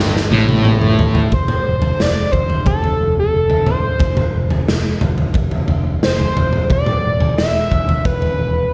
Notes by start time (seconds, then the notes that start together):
Already playing: G1 G2 E3 A3 C4 G4
0.00 snare
0.17 snare
0.31 A1 A2, high tom
0.49 high tom
0.65 mid tom
0.81 mid tom
0.99 floor tom
1.15 floor tom
1.32 F1 C5, kick, floor tom
1.48 mid tom
1.67 F1
1.82 floor tom
2.00 F1 D5, snare
2.32 F1 C5, kick, floor tom
2.50 floor tom
2.66 F1 A4, kick, floor tom
2.84 floor tom
3.01 F1
3.19 A4
3.34 F1
3.50 floor tom
3.66 C5, floor tom, mid tom
3.99 F1, kick, floor tom
4.17 floor tom, mid tom
4.36 F1
4.50 floor tom
4.68 F1, snare
5.01 F1, floor tom, mid tom
5.18 floor tom
5.34 F1, kick, floor tom
5.51 floor tom
5.68 F1, floor tom
6.03 F1 C5, snare
6.20 floor tom
6.37 F1, floor tom, mid tom
6.53 mid tom
6.70 E1 D5, kick, floor tom
6.86 mid tom
7.05 E1
7.20 floor tom
7.38 E1 E5, snare
7.71 E1, kick, floor tom
7.89 floor tom
8.05 E1 B4, kick, floor tom
8.22 floor tom
8.39 E1